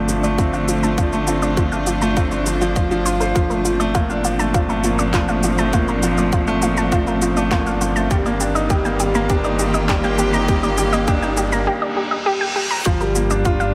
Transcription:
Already playing: detuned saw bass G1, string quartet D3 A3 D4, grand piano F3 A3 C4 D4, riser
0.09 grand piano F3, synth arpeggio sound F4, shaker
0.23 grand piano A3, string quartet F4, synth arpeggio sound D5, shaker
0.38 grand piano C4, synth arpeggio sound F4, kick, shaker
0.53 grand piano D4, synth arpeggio sound F5, shaker
0.68 grand piano F3, synth arpeggio sound F4, shaker
0.83 grand piano A3, synth arpeggio sound A5, shaker
0.98 grand piano F3, synth arpeggio sound F4, kick, shaker
1.13 grand piano A3, synth arpeggio sound C5, shaker
1.27 grand piano C4, synth arpeggio sound F4, shaker
1.42 grand piano D4, synth arpeggio sound D5, shaker
1.57 grand piano F3, synth arpeggio sound F4, kick, shaker
1.72 grand piano A3, synth arpeggio sound F5, shaker
1.87 grand piano F3, synth arpeggio sound F4, shaker
2.02 grand piano A3, synth arpeggio sound A5, shaker
2.17 grand piano C4, synth arpeggio sound F4, kick, shaker
2.31 grand piano D4, synth arpeggio sound C5, shaker
2.46 grand piano F3, synth arpeggio sound F4, shaker
2.61 grand piano F3, synth arpeggio sound F4, shaker
2.76 grand piano F3, synth arpeggio sound F4, kick, shaker
2.91 grand piano F3, synth arpeggio sound F4, shaker
3.06 grand piano F4, synth arpeggio sound C5, shaker
3.20 synth arpeggio sound A4, grand piano C5, shaker
3.35 detuned saw bass G1, string quartet A#2, grand piano F3, synth arpeggio sound F4, kick, shaker
3.50 grand piano A3, synth arpeggio sound A#4, shaker
3.61 string quartet F3, synth arpeggio sound F4
3.65 grand piano F3, string quartet C4, shaker
3.80 grand piano A3, synth arpeggio sound D5, shaker
3.95 grand piano A#3, synth arpeggio sound F4, kick, shaker
4.10 grand piano D4, synth arpeggio sound F5, shaker
4.25 grand piano F3, synth arpeggio sound F4, shaker
4.39 grand piano A3, synth arpeggio sound A5, shaker
4.54 grand piano F3, synth arpeggio sound F4, kick, shaker
4.69 grand piano A3, synth arpeggio sound A#4, shaker
4.84 grand piano A#3, synth arpeggio sound F4, shaker
4.99 grand piano D4, synth arpeggio sound D5, shaker
5.14 grand piano F3, synth arpeggio sound F4, kick, clap, shaker
5.28 grand piano A3, synth arpeggio sound F5, shaker
5.43 grand piano F3, synth arpeggio sound F4, shaker
5.58 grand piano A3, synth arpeggio sound A5, shaker
5.73 grand piano A#3, synth arpeggio sound F4, kick, shaker
5.88 grand piano D4, synth arpeggio sound A#4, shaker
6.03 grand piano F3, synth arpeggio sound F4, shaker
6.18 grand piano A3, synth arpeggio sound D5, shaker
6.32 grand piano F3, synth arpeggio sound F4, kick, shaker
6.47 grand piano A3, synth arpeggio sound F5, shaker
6.62 grand piano A#3, synth arpeggio sound F4, shaker
6.77 grand piano D4, synth arpeggio sound A5, shaker
6.92 grand piano F3, synth arpeggio sound F4, kick, shaker
7.07 grand piano A3, synth arpeggio sound A#4, shaker
7.22 grand piano F3, synth arpeggio sound F4, shaker
7.37 grand piano A3, synth arpeggio sound D5, shaker
7.51 grand piano A#3, synth arpeggio sound F4, kick, clap, shaker
7.66 grand piano D4, synth arpeggio sound F5, shaker
7.81 grand piano F3, synth arpeggio sound F4, shaker
7.96 grand piano A3, synth arpeggio sound A5, shaker
8.11 detuned saw bass G1, string quartet D#3, grand piano G3, synth arpeggio sound G4, kick, shaker
8.26 grand piano A#3, string quartet A#3, synth arpeggio sound D5, shaker
8.40 grand piano D4, synth arpeggio sound G4, shaker
8.55 grand piano D#4, synth arpeggio sound D#5, shaker
8.70 grand piano G3, synth arpeggio sound G4, kick, shaker
8.85 grand piano A#3, string quartet F4, synth arpeggio sound G5, shaker
9.00 grand piano G3, synth arpeggio sound G4, shaker
9.15 grand piano A#3, synth arpeggio sound A#5, shaker
9.30 grand piano D4, synth arpeggio sound G4, kick, shaker
9.44 grand piano D#4, synth arpeggio sound D5, shaker
9.59 grand piano G3, synth arpeggio sound G4, shaker
9.63 string quartet G4
9.74 grand piano A#3, synth arpeggio sound D#5, shaker
9.89 grand piano G3, synth arpeggio sound G4, kick, clap, shaker
10.04 grand piano A#3, synth arpeggio sound G5, shaker
10.19 grand piano D4, synth arpeggio sound G4, shaker
10.33 grand piano D#4, synth arpeggio sound A#5, shaker
10.48 grand piano G3, synth arpeggio sound G4, kick, shaker
10.63 grand piano A#3, synth arpeggio sound D5, shaker
10.78 grand piano G3, synth arpeggio sound G4, shaker
10.93 grand piano A#3, synth arpeggio sound D#5, shaker
11.08 grand piano D4, synth arpeggio sound G4, kick, shaker
11.22 grand piano D#4, synth arpeggio sound G5, shaker
11.37 grand piano G3, synth arpeggio sound G4, shaker
11.52 grand piano A#3, synth arpeggio sound A#5, shaker
11.67 synth arpeggio sound G4, reverse cymbal
11.82 synth arpeggio sound D5
11.97 synth arpeggio sound G4
12.11 synth arpeggio sound D#5
12.26 synth arpeggio sound G4
12.41 synth arpeggio sound G5
12.56 synth arpeggio sound G4
12.71 synth arpeggio sound A#5
12.86 detuned saw bass G1, grand piano F3, string quartet G3, synth arpeggio sound F4, kick, shaker
13.00 grand piano G3, synth arpeggio sound A#4, shaker
13.15 grand piano A#3, synth arpeggio sound F4, shaker
13.30 grand piano D4, synth arpeggio sound D5, shaker
13.45 string quartet D4, synth arpeggio sound F4, grand piano F4, kick, shaker
13.60 grand piano D4, synth arpeggio sound F5, shaker

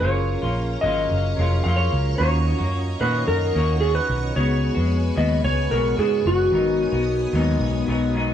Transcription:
0.00 picked electric bass F#1, clean electric guitar F#3 A#3 C#4, tine electric piano C#4 F4 G#4, electric slide guitar C#5, string machine C#5 F5 A#5 C#6
0.05 clean electric guitar F4, tine electric piano A#4
0.42 picked electric bass A#1, clean electric guitar C#4 F4
0.46 clean electric guitar A#3
0.81 picked electric bass G#1, clean electric guitar F#3 A#3, electric slide guitar D#5
0.85 clean electric guitar C#4 F4
1.11 picked electric bass F#1
1.37 picked electric bass F1, clean electric guitar F#3 A#3 C#4, tine electric piano C#4 F4 G#4 A#4
1.41 clean electric guitar F4
1.64 picked electric bass F2, clean electric guitar F#3 A#3 C#4, electric slide guitar F5
1.68 clean electric guitar F4
1.76 electric slide guitar C#5
1.93 picked electric bass C#2
2.17 picked electric bass D#2, clean electric guitar D#3 A#3 C#4, tine electric piano C#4 F4 F#4, electric slide guitar C#5, string machine D#5
2.22 clean electric guitar F#4, tine electric piano A#5
2.59 picked electric bass F#2, clean electric guitar C#4 F#4
2.63 clean electric guitar A#3
3.00 picked electric bass A#2, clean electric guitar D#3 A#3 C#4 F#4, electric slide guitar B4
3.28 picked electric bass F#2, electric slide guitar A#4
3.54 picked electric bass D#2, clean electric guitar D#3 A#3 C#4
3.58 clean electric guitar F#4
3.80 clean electric guitar D#3 C#4, electric slide guitar G#4
3.84 clean electric guitar F#4
3.95 electric slide guitar B4
4.10 picked electric bass B1
4.34 picked electric bass C#2, clean electric guitar C#3 G#3 B3, tine electric piano B3 D#4 F#4, string machine B4 G#5, electric slide guitar C#5
4.39 clean electric guitar F#4, tine electric piano G#4
4.75 picked electric bass F2, clean electric guitar B3 F#4
4.79 clean electric guitar G#3
5.15 picked electric bass D#2, clean electric guitar C#3 G#3 B3 F#4, electric slide guitar D#5
5.44 picked electric bass C#2, electric slide guitar C#5
5.70 picked electric bass B1, clean electric guitar C#3 G#3 B3, electric slide guitar A#4
5.74 clean electric guitar F#4
5.97 picked electric bass G#2, clean electric guitar C#3 G#3 B3 F#4, electric slide guitar G#4
6.26 picked electric bass F#1, electric slide guitar F#4
6.50 picked electric bass G#1, clean electric guitar G#2 F#3 B3, tine electric piano B3 D#4 F#4, string machine B3 G#5 D#6
6.55 clean electric guitar D#4, tine electric piano A#4
6.92 picked electric bass B1, clean electric guitar B3 D#4
6.96 clean electric guitar F#3
7.33 picked electric bass D#2, clean electric guitar G#2 F#3 B3 D#4
7.60 picked electric bass B1
7.86 picked electric bass B1, clean electric guitar G#2 F#3 B3 D#4
8.13 clean electric guitar G#2 F#3 B3 D#4

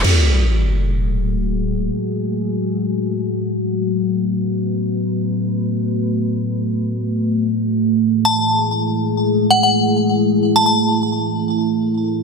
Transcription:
0.04 ambient pad A3 F#4 G#4, crash, sub drop
3.74 ambient pad B4
7.43 ambient pad E4 G#4
8.25 synth bell A5
9.50 synth bell F#5
9.63 synth bell F#5
10.56 synth bell A5
10.66 synth bell A5
11.12 ambient pad A4

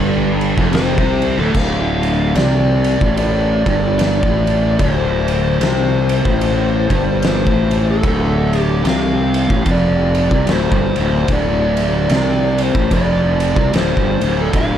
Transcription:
Already playing: fingered electric bass G1, distorted electric guitar G2
0.41 crash
0.57 fingered electric bass F1, distorted electric guitar F2, kick
0.73 lead electric guitar C5, snare, crash
0.98 fingered electric bass C2, distorted electric guitar C3, kick
1.22 crash
1.38 fingered electric bass D1, distorted electric guitar D2, lead electric guitar A4
1.54 fingered electric bass D1, distorted electric guitar D2, lead electric guitar F5, kick, crash
2.03 ride
2.35 fingered electric bass C2, distorted electric guitar C3, lead electric guitar D5, snare, ride
2.84 ride
3.01 fingered electric bass A1, distorted electric guitar A2, kick
3.17 lead electric guitar D5, ride
3.66 fingered electric bass G1, distorted electric guitar G2, kick, ride
3.99 lead electric guitar D5, snare, ride
4.22 fingered electric bass A1, distorted electric guitar A2, kick
4.47 ride
4.79 fingered electric bass D1, distorted electric guitar D2, lead electric guitar C5, kick, ride
5.28 ride
5.60 fingered electric bass C2, distorted electric guitar C3, snare, ride
6.09 ride
6.25 fingered electric bass A1, distorted electric guitar A2, kick
6.41 ride
6.89 fingered electric bass G1, distorted electric guitar G2, kick, ride
7.22 lead electric guitar C5, snare, ride
7.46 fingered electric bass A1, distorted electric guitar A2, kick
7.71 ride
7.90 lead electric guitar A4
8.03 fingered electric bass D1, distorted electric guitar D2, kick, ride
8.53 ride
8.59 lead electric guitar G4
8.83 fingered electric bass C2, distorted electric guitar C3, lead electric guitar F5, snare, ride
9.34 ride
9.48 fingered electric bass A1, distorted electric guitar A2, kick
9.65 fingered electric bass F1, distorted electric guitar F2, kick, ride
9.71 lead electric guitar D5
10.15 ride
10.31 fingered electric bass C2, distorted electric guitar C3, kick
10.47 fingered electric bass D1, distorted electric guitar D2, snare, ride
10.52 lead electric guitar C5
10.72 fingered electric bass G1, distorted electric guitar G2, kick
10.96 fingered electric bass D1, distorted electric guitar D2, ride
11.28 fingered electric bass D1, distorted electric guitar D2, kick, ride
11.33 lead electric guitar D5
11.77 ride
12.09 fingered electric bass C2, distorted electric guitar C3, snare, ride
12.58 ride
12.63 lead electric guitar C5
12.75 fingered electric bass A1, distorted electric guitar A2, kick
12.91 fingered electric bass F1, distorted electric guitar F2, lead electric guitar D5, kick, ride
13.40 ride
13.55 fingered electric bass C2, distorted electric guitar C3, kick
13.71 fingered electric bass D1, distorted electric guitar D2, ride
13.76 lead electric guitar C5, snare
13.97 fingered electric bass G1, distorted electric guitar G2, kick
14.21 fingered electric bass D1, distorted electric guitar D2, ride
14.41 lead electric guitar A4
14.53 fingered electric bass D1, distorted electric guitar D2, lead electric guitar F5, kick, ride

